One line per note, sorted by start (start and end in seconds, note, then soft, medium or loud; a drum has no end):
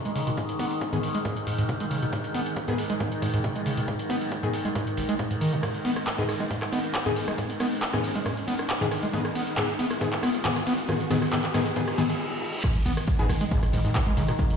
0.00 12.20 G#2 medium
0.00 12.20 D#3 medium
0.00 riser medium
0.05 0.11 G#3 medium
0.05 closed hi-hat medium
0.15 0.22 C#3 medium
0.15 open hi-hat loud
0.27 0.30 B2 medium
0.27 closed hi-hat medium
0.37 0.44 G#2 medium
0.37 kick loud
0.37 closed hi-hat medium
0.49 closed hi-hat medium
0.59 0.66 B3 loud
0.59 kick medium
0.59 open hi-hat loud
0.71 open hi-hat medium
0.81 kick loud
0.81 closed hi-hat medium
0.93 0.98 G#2 loud
0.93 0.98 D#3 medium
0.93 0.98 B3 medium
0.93 0.98 G#4 medium
0.93 closed hi-hat medium
1.03 open hi-hat loud
1.15 1.18 G#3 loud
1.15 closed hi-hat medium
1.25 1.35 G#2 loud
1.25 kick loud
1.25 closed hi-hat medium
1.36 closed hi-hat medium
1.47 1.53 G#2 medium
1.47 open hi-hat loud
1.58 1.64 G#2 loud
1.58 closed hi-hat medium
1.69 1.73 B2 loud
1.69 kick loud
1.69 closed hi-hat medium
1.80 1.86 G#3 medium
1.80 closed hi-hat medium
1.91 1.97 C#3 medium
1.91 open hi-hat loud
2.02 2.06 B2 medium
2.02 closed hi-hat medium
2.13 2.19 G#2 medium
2.13 kick loud
2.13 closed hi-hat medium
2.24 closed hi-hat medium
2.34 2.41 B3 loud
2.34 open hi-hat loud
2.46 closed hi-hat medium
2.56 kick loud
2.56 closed hi-hat medium
2.68 2.74 G#2 loud
2.68 2.73 D#3 loud
2.68 2.73 B3 medium
2.68 2.73 G#4 loud
2.68 closed hi-hat medium
2.78 open hi-hat loud
2.90 2.93 G#3 loud
2.90 closed hi-hat medium
3.00 3.10 G#2 loud
3.00 kick loud
3.00 closed hi-hat medium
3.12 closed hi-hat medium
3.22 3.28 G#2 medium
3.22 kick medium
3.22 open hi-hat loud
3.34 3.39 G#2 loud
3.34 closed hi-hat medium
3.44 3.48 B2 loud
3.44 kick loud
3.44 closed hi-hat medium
3.55 3.61 G#3 medium
3.55 closed hi-hat medium
3.66 3.72 C#3 medium
3.66 open hi-hat loud
3.77 3.81 B2 medium
3.77 closed hi-hat medium
3.88 3.94 G#2 medium
3.88 kick loud
3.88 closed hi-hat medium
3.99 closed hi-hat medium
4.10 4.16 B3 loud
4.10 kick medium
4.10 open hi-hat loud
4.21 open hi-hat medium
4.32 kick loud
4.32 closed hi-hat medium
4.43 4.49 G#2 loud
4.43 4.48 D#3 medium
4.43 4.48 B3 medium
4.43 4.48 G#4 medium
4.43 closed hi-hat medium
4.54 open hi-hat loud
4.65 4.68 G#3 loud
4.65 closed hi-hat medium
4.75 4.85 G#2 loud
4.75 kick loud
4.75 closed hi-hat medium
4.87 closed hi-hat medium
4.97 5.01 G#1 medium
4.97 open hi-hat loud
5.09 5.15 G#3 medium
5.09 closed hi-hat medium
5.19 5.23 G#2 loud
5.19 kick loud
5.19 closed hi-hat medium
5.31 5.36 G#2 medium
5.31 closed hi-hat medium
5.41 5.54 D#3 loud
5.41 open hi-hat loud
5.53 5.56 G#2 medium
5.53 closed hi-hat medium
5.63 5.69 G#2 medium
5.63 kick loud
5.63 cross-stick medium
5.63 closed hi-hat medium
5.63 ride medium
5.75 closed hi-hat medium
5.85 5.91 B3 medium
5.85 open hi-hat loud
5.85 ride medium
5.96 cross-stick medium
5.96 closed hi-hat medium
6.07 kick loud
6.07 clap loud
6.07 closed hi-hat medium
6.07 ride medium
6.18 6.24 G#2 medium
6.18 6.23 D#3 medium
6.18 6.23 B3 medium
6.18 6.23 G#4 loud
6.18 closed hi-hat medium
6.29 cross-stick medium
6.29 open hi-hat loud
6.29 ride medium
6.40 6.44 G#3 medium
6.40 closed hi-hat medium
6.51 6.57 G#2 medium
6.51 kick loud
6.51 closed hi-hat medium
6.51 ride medium
6.62 cross-stick medium
6.62 clap soft
6.62 closed hi-hat medium
6.72 6.79 B3 medium
6.72 kick medium
6.72 open hi-hat loud
6.72 ride medium
6.84 closed hi-hat medium
6.94 kick loud
6.94 cross-stick medium
6.94 clap loud
6.94 closed hi-hat medium
7.06 7.12 G#2 loud
7.06 7.11 D#3 medium
7.06 7.11 B3 medium
7.06 7.11 G#4 loud
7.06 closed hi-hat medium
7.16 open hi-hat loud
7.16 ride medium
7.28 7.31 G#3 loud
7.28 cross-stick medium
7.28 closed hi-hat medium
7.38 7.45 G#2 medium
7.38 kick loud
7.38 closed hi-hat medium
7.38 ride medium
7.50 closed hi-hat medium
7.60 7.66 B3 loud
7.60 kick medium
7.60 cross-stick medium
7.60 open hi-hat loud
7.60 ride medium
7.72 open hi-hat medium
7.82 kick loud
7.82 clap loud
7.82 closed hi-hat medium
7.82 ride medium
7.93 7.99 G#2 loud
7.93 7.99 D#3 loud
7.93 7.99 B3 medium
7.93 7.99 G#4 loud
7.93 cross-stick medium
7.93 closed hi-hat medium
8.04 open hi-hat loud
8.04 ride medium
8.15 8.19 G#3 medium
8.15 closed hi-hat medium
8.26 8.32 G#2 medium
8.26 kick loud
8.26 cross-stick medium
8.26 closed hi-hat medium
8.26 ride medium
8.37 closed hi-hat medium
8.48 8.54 B3 loud
8.48 open hi-hat loud
8.48 ride medium
8.59 cross-stick medium
8.59 closed hi-hat medium
8.70 kick loud
8.70 clap loud
8.70 closed hi-hat medium
8.70 ride medium
8.81 8.87 G#2 loud
8.81 8.86 D#3 loud
8.81 8.86 B3 medium
8.81 8.86 G#4 loud
8.81 closed hi-hat medium
8.91 cross-stick medium
8.91 open hi-hat loud
8.91 ride medium
9.03 9.06 G#3 loud
9.03 closed hi-hat medium
9.13 9.20 G#2 medium
9.13 9.19 D#3 loud
9.13 9.19 B3 medium
9.13 9.19 G#4 loud
9.13 kick loud
9.13 closed hi-hat medium
9.13 ride medium
9.25 cross-stick medium
9.25 closed hi-hat medium
9.35 9.42 B3 loud
9.35 open hi-hat loud
9.35 ride medium
9.47 closed hi-hat medium
9.57 9.64 G#2 medium
9.57 9.63 D#3 medium
9.57 9.63 B3 medium
9.57 9.63 G#4 loud
9.57 kick loud
9.57 cross-stick medium
9.57 clap loud
9.57 closed hi-hat medium
9.57 ride medium
9.69 closed hi-hat medium
9.79 9.85 B3 loud
9.79 open hi-hat loud
9.79 ride medium
9.91 cross-stick medium
9.91 closed hi-hat medium
10.01 10.07 G#2 medium
10.01 10.07 D#3 loud
10.01 10.07 B3 medium
10.01 10.07 G#4 loud
10.01 kick loud
10.01 closed hi-hat medium
10.01 ride medium
10.13 clap soft
10.13 closed hi-hat medium
10.23 10.29 B3 loud
10.23 kick medium
10.23 cross-stick medium
10.23 open hi-hat loud
10.23 ride medium
10.34 closed hi-hat medium
10.45 10.51 G#2 medium
10.45 10.50 D#3 loud
10.45 10.50 B3 medium
10.45 10.50 G#4 loud
10.45 kick loud
10.45 clap loud
10.45 closed hi-hat medium
10.56 cross-stick medium
10.56 closed hi-hat medium
10.67 10.73 B3 loud
10.67 open hi-hat loud
10.67 ride medium
10.78 closed hi-hat medium
10.89 10.95 G#2 medium
10.89 10.94 D#3 loud
10.89 10.94 B3 medium
10.89 10.94 G#4 loud
10.89 kick loud
10.89 cross-stick medium
10.89 closed hi-hat medium
10.89 ride medium
11.00 closed hi-hat medium
11.10 11.17 G#2 medium
11.10 11.16 D#3 loud
11.10 11.16 B3 medium
11.10 11.16 G#4 loud
11.10 kick medium
11.10 open hi-hat loud
11.10 ride medium
11.22 cross-stick medium
11.22 open hi-hat medium
11.32 11.39 G#2 medium
11.32 11.38 D#3 loud
11.32 11.38 B3 medium
11.32 11.38 G#4 loud
11.32 kick loud
11.32 clap loud
11.32 closed hi-hat medium
11.32 ride medium
11.44 clap soft
11.44 closed hi-hat medium
11.54 11.61 G#2 medium
11.54 11.60 D#3 loud
11.54 11.60 B3 medium
11.54 11.60 G#4 loud
11.54 cross-stick medium
11.54 open hi-hat loud
11.54 ride medium
11.66 closed hi-hat medium
11.76 11.82 G#2 medium
11.76 11.82 D#3 loud
11.76 11.82 B3 medium
11.76 11.82 G#4 loud
11.76 kick loud
11.76 closed hi-hat medium
11.76 ride medium
11.76 reverse cymbal medium
11.88 cross-stick medium
11.88 closed hi-hat medium
11.98 12.04 G#2 medium
11.98 12.04 D#3 loud
11.98 12.04 B3 medium
11.98 12.04 G#4 loud
11.98 open hi-hat loud
11.98 ride medium
12.10 closed hi-hat medium
12.64 12.70 G#2 medium
12.64 14.57 G#2 medium
12.64 14.57 D#3 medium
12.64 kick loud
12.64 cross-stick medium
12.64 closed hi-hat medium
12.64 crash loud
12.64 ride medium
12.75 12.85 G#1 medium
12.75 closed hi-hat medium
12.86 12.97 G#1 loud
12.86 12.92 B3 loud
12.86 open hi-hat loud
12.86 ride medium
12.97 cross-stick medium
12.97 closed hi-hat medium
13.08 kick loud
13.08 closed hi-hat medium
13.08 ride medium
13.19 13.29 G#1 medium
13.19 13.25 G#2 loud
13.19 13.24 D#3 loud
13.19 13.24 B3 loud
13.19 13.24 G#4 loud
13.19 closed hi-hat medium
13.29 13.41 G#1 loud
13.29 cross-stick medium
13.29 open hi-hat loud
13.29 ride medium
13.41 13.44 G#3 loud
13.41 closed hi-hat medium
13.51 13.61 G#2 loud
13.51 kick loud
13.51 closed hi-hat medium
13.51 ride medium
13.63 13.73 G#1 medium
13.63 cross-stick medium
13.63 closed hi-hat medium
13.73 13.85 G#1 loud
13.73 13.80 G#2 medium
13.73 open hi-hat loud
13.73 ride medium
13.85 13.90 G#2 loud
13.85 closed hi-hat medium
13.95 13.99 B2 loud
13.95 kick loud
13.95 cross-stick medium
13.95 clap loud
13.95 closed hi-hat medium
13.95 ride medium
14.07 14.16 G#1 medium
14.07 14.12 G#3 medium
14.07 closed hi-hat medium
14.17 14.28 G#1 loud
14.17 14.23 C#3 medium
14.17 open hi-hat loud
14.17 ride medium
14.28 14.32 B2 medium
14.28 cross-stick medium
14.28 closed hi-hat medium
14.39 14.45 G#2 medium
14.39 kick loud
14.39 closed hi-hat medium
14.39 ride medium
14.50 14.57 G#1 medium
14.50 closed hi-hat medium